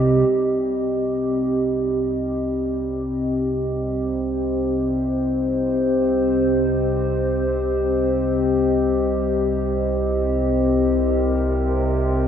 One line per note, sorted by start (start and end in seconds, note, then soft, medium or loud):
0.00 0.30 C2 medium
0.00 0.28 C3 medium
0.00 12.28 C4 medium
0.00 12.28 G4 medium
0.00 0.29 A#4 medium
0.00 12.28 D#5 medium
0.30 12.28 C2 medium
0.30 12.28 C3 medium
3.73 11.15 C5 medium
10.86 12.28 A#4 medium